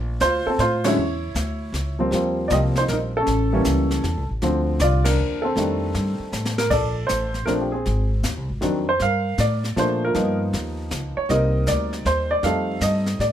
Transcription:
Already playing: A#1
0.20 D2 F4 C5, snare, hi-hat pedal
0.46 C4 A4, muted upright bass stroke
0.58 A2 F4 C5, snare
0.84 D3 F#3 G#3 C#4 E4 C#5, snare, ride
0.96 E2, brush sweep
1.34 D2, snare, hi-hat pedal
1.72 C#2, snare
1.99 F3 G3 A#3 C4
2.11 D#2 F3 G3 A#3 C4, brush sweep, snare
2.48 C2 F3 G3 A#3 D5, snare, hi-hat pedal
2.52 C4 G4 D#5
2.76 C5, snare
2.81 D#4
2.88 A#1 A#4, snare
2.93 D#4
3.17 C#4 A4
3.27 A1, brush sweep, snare
3.53 E3 G3 A#3 C#4
3.65 C#2, snare, hi-hat pedal
3.91 snare
4.04 E2, snare
4.17 C#2
4.29 A1
4.42 D2 D3 F3 C4, brush sweep, snare
4.79 C2 F4 D5, snare, hi-hat pedal
5.04 D4 A#4, snare, ride
5.18 D#2
5.42 C4 A4
5.56 F2 D#3 G3 A3 D4, brush sweep, snare
5.94 G2, snare
6.19 muted upright bass stroke
6.32 A2, snare, hi-hat pedal
6.45 snare
6.58 A#4, snare
6.70 A#1 A4 D5, brush sweep, kick, snare, crash
7.07 A1 C5, snare, hi-hat pedal
7.34 snare
7.46 A#1 F3 A3 C4 D4 A#4, snare
7.61 G4
7.72 C4 G#4
7.86 G#1, brush sweep, snare
8.23 D#2, snare, hi-hat pedal
8.37 C2
8.49 G#1
8.61 F2 D#3 F#3 C4 D4, snare
8.89 C5
9.00 G2 F5, brush sweep, snare
9.04 A#4
9.38 A2 D5, snare, hi-hat pedal
9.64 snare
9.76 A#2 F3 A3 A#3 D4 C5, snare
10.05 F4 A#4
10.14 G2 F3 A#3 B3 D#4, brush sweep, snare
10.53 D#2, snare
10.91 C#2, snare, hi-hat pedal
11.17 C#5, muted upright bass stroke
11.29 C2 G3 A#3 C4 D#4 A#4 D#5, brush sweep, snare
11.66 D2 D5, snare, hi-hat pedal
11.93 snare
12.05 D#2 C5, snare
12.31 D5
12.43 F2 G3 A3 C4 D#4 A4 F5, brush sweep, snare
12.81 G2 D#5, snare, hi-hat pedal
13.06 snare
13.19 A2 D5, snare

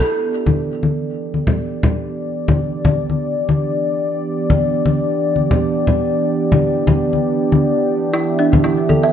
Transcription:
0.07 E3 B3 D4 G4 D5
0.46 high conga, low conga
0.83 high conga
1.34 high conga
1.47 low conga
1.83 low conga
2.48 high conga, low conga
2.85 high conga, low conga
3.10 high conga
3.49 high conga
4.50 high conga, low conga
4.86 high conga
5.36 high conga
5.51 low conga
5.87 low conga
6.52 high conga, low conga
6.87 high conga, low conga
7.13 high conga
7.52 high conga
8.13 E4 E5
8.39 D4
8.53 high conga, low conga
8.64 E4
8.89 A4, high conga
9.03 E5

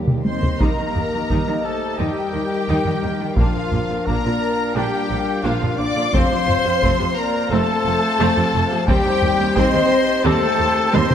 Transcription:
Already playing: D#2 G3 A#3 G4 A#4
0.07 taiko mid
0.24 C4 C5 D#5 C6, taiko high
0.43 taiko low
0.60 D#2 D#3 G3 A#3 D#4 G4 A#4 D#5 A#5, taiko
0.78 D#3 G3
0.95 D#2 D#3 A#3, taiko low-mid
1.12 D#3 G3
1.30 D#2 D#3 G3 D#4, taiko
1.47 D#3 G3
1.63 A3 A4 C5 A5
1.98 D#2 D#3 G3 D#4 G4 A#4 G5
2.34 D#2 D#3 A#3
2.69 D#2 D#3 G3 D#4
2.85 D#3 G3, taiko low-mid
3.02 D#2 D#3 A#3
3.19 D#3 G3
3.35 A#1 A#2 F3 A#3 D4 F4 A#4 F5, taiko
3.55 A#2 D3 F3
3.72 A#1 A#2 F3 A#3, taiko low-mid
3.90 A#2 D3 F3
4.05 A#1 A#2 A#3 D4 A#4 D5 A#5, taiko
4.25 A#2 D3 F3
4.74 A#1 A#2 G3 A#3 D4 G4 A#4 G5
5.09 A#1 A#2 F3 A#3
5.43 A#1 A#2 F3 A#3 D4 F4 A#4 F5
5.61 A#2 D3 F3, taiko low-mid
5.77 A#1 A#2 F3 A#3 D4 D5 F5 D6
5.95 A#2 D3 F3
6.11 F1 F2 A3 C4 C5 F5 C6, taiko
6.29 F2 C3 F3
6.47 F1 F2 F3 A3, taiko low-mid
6.64 F2 C3 F3
6.81 F1 F2 A3 C4, taiko
6.99 F2 C3 F3
7.16 A#3 A#4 D5 A#5
7.50 F1 F2 A3 C4 A4 C5 A5
7.86 F1 F2 F3 A3
8.19 F1 F2 A3 C4
8.37 F2 C3 F3, taiko low-mid
8.54 F1 F2 F3 A3
8.70 F2 C3 F3
8.87 D#2 G3 C4 D#4 G4 C5 G5, taiko
9.04 D#2 C3 D#3
9.22 D#2 D#3 G3, taiko low-mid
9.40 D#2 C3 D#3
9.56 D#2 G3 C4 C5 D#5 C6, taiko
9.73 D#2 C3 D#3
10.24 D#2 G3 A3 C4 A4 C5 A5
10.58 D#2 D#3 G3
10.92 D#2 G3 C4 C5 D#5 C6, taiko high
11.09 D#2 C3 D#3, taiko mid

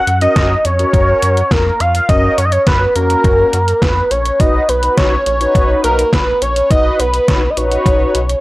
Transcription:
Already playing: F#5
0.07 F#2, closed hi-hat
0.21 C#4 F#4 A#4 D#5, closed hi-hat
0.36 F#2, kick, snare, closed hi-hat
0.58 D#5
0.65 F2 C#5, closed hi-hat
0.79 C#4 F#4 A#4, closed hi-hat
0.93 F#2, kick, closed hi-hat
1.22 F#2, closed hi-hat
1.37 closed hi-hat
1.51 F2 A#4, kick, snare, closed hi-hat
1.80 F2 F5, closed hi-hat
1.95 closed hi-hat
2.09 F#2 C#4 F#4 A#4 D#5, kick, closed hi-hat
2.38 F#2 C#5, closed hi-hat
2.45 D#5
2.52 C#5, closed hi-hat
2.67 F#2 C#4 F#4 A#4 B4, kick, snare, closed hi-hat
2.96 F2 C#4 F#4 A#4, closed hi-hat
3.10 closed hi-hat
3.24 F#2, kick, closed hi-hat
3.53 F#2, closed hi-hat
3.68 closed hi-hat
3.82 F2 B4, kick, snare, closed hi-hat
4.11 A#1 C#5, closed hi-hat
4.25 closed hi-hat
4.40 B1 D#4 F#4 B4 D#5, kick, closed hi-hat
4.69 B1 B4, closed hi-hat
4.83 D#4 F#4 B4, closed hi-hat
4.97 B1 C#5, kick, snare, closed hi-hat
5.26 A#1 C#5, closed hi-hat
5.41 D#4 F#4 B4, closed hi-hat
5.55 B1, kick, closed hi-hat
5.84 B1 A#4, closed hi-hat
5.99 closed hi-hat
6.13 A#1 B4, kick, snare, closed hi-hat
6.42 A#1 C#5, closed hi-hat
6.56 closed hi-hat
6.71 B1 D#4 F#4 B4 D#5, kick, closed hi-hat
6.99 B1 B4, closed hi-hat
7.14 closed hi-hat
7.28 B1 D#4 F#4 C#5, kick, snare, closed hi-hat
7.50 D#5
7.57 A#1 D#4 F#4 B4 C#5, closed hi-hat
7.72 closed hi-hat
7.86 B1, kick, closed hi-hat
8.15 B1, closed hi-hat
8.29 closed hi-hat

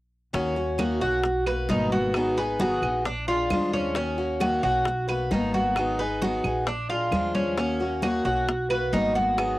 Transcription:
0.33 D#2 D#3 A#3 C#4 F#4, high bongo, high conga
0.56 A#3 C#4 F#4, high bongo, high conga
0.78 D#3 A#3 C#4 F#4, high bongo, high conga, claves
1.01 B1 C#4 F#4, high bongo, high conga
1.24 muted steel-string acoustic guitar stroke, high bongo, high conga
1.46 A#3 B3 F#4 B4, high bongo, high conga, claves
1.69 G#1 B2 D#3 A#3 B3 D#4 F#4, high bongo, low bongo, high conga
1.92 F#4, high conga
2.14 D#3 F#3 B3 D#4 G#4, high bongo, claves
2.37 B3 D#4 G#4 B4, high bongo, high conga
2.60 D#3 F#3 B3 D#4 F#4 G#4, high bongo, high conga
2.82 A#1 B3 D#4 G#4, high bongo, high conga, claves
3.05 D4, muted steel-string acoustic guitar stroke, high bongo, high conga
3.28 G#3 D4 F4, high bongo, high conga
3.50 D#2 F3 G#3 D4 F4, high bongo, low bongo, high conga, claves
3.73 C#4, high conga
3.95 D#3 A#3 C#4 F#4, high bongo, high conga
4.18 A#3 C#4 F#4, high bongo, high conga
4.40 D#3 A#3 C#4 F#4, high bongo, high conga, claves
4.63 B1 A#3 C#4 F#4, high bongo, high conga
4.85 muted steel-string acoustic guitar stroke, high bongo, high conga
5.08 A#3 B3 F#4 B4, high bongo, high conga, claves
5.31 G#1 B2 D#3 A#3 B3 D#4 F#4, high bongo, low bongo, high conga
5.54 F#4, high conga
5.76 D#3 F#3 B3 D#4 G#4, high bongo, high conga, claves
5.99 B3 D#4 G#4 B4, high bongo, high conga
6.22 D#3 F#3 B3 D#4 F#4 G#4, high bongo, high conga
6.44 A#1 B3 D#4 G#4, high bongo, high conga, claves
6.67 D4, muted steel-string acoustic guitar stroke, high bongo, high conga
6.90 G#3 D4 F4, high bongo, high conga
7.11 D#2 F3 G#3 D4 F4, high bongo, low bongo, high conga, claves
7.35 C#4, high conga
7.57 D#3 A#3 C#4 F#4, high bongo, high conga
7.80 A#3 C#4 F#4, high bongo, high conga
8.02 D#3 A#3 C#4 F#4, high bongo, high conga, claves
8.25 B1 A#3 C#4 F#4, high bongo, high conga
8.48 muted steel-string acoustic guitar stroke, high bongo, high conga
8.70 A#3 B3 F#4 B4, high bongo, high conga, claves
8.93 G#1 B2 D#3 A#3 B3 D#4 F#4, high bongo, low bongo, high conga
9.15 F#4, high conga
9.38 D#3 F#3 B3 D#4 G#4, high bongo, high conga, claves

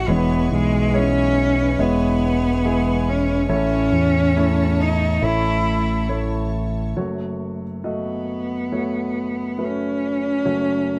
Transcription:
Already playing: E3 A3 E4 F#4 C#5 C#6
0.07 E1 E2 E3 G#3 B3 E4 B4 C#5 G#5
0.51 B1 G#3
0.93 G#3 C#4 E4 C#5
1.78 E1 G#3 B3 E4 C#5
2.65 G#3 E4 G#4
3.09 C#4
3.49 A1 A2 A3 C#4 E4 C#5 A5
3.92 E2
4.36 A3 E4 C#5
4.81 D#4
5.22 A1 A3 E4 C#5
6.09 A3 E4 C#5
6.96 F#1 F#2 A3 F#4 C#5
7.84 A3 B3 F#4 D#5
8.71 A3 F#4 C#5
9.58 A3 F#4 B4
9.64 C#4
10.45 F#1 F#2 A3 F#4 C#5

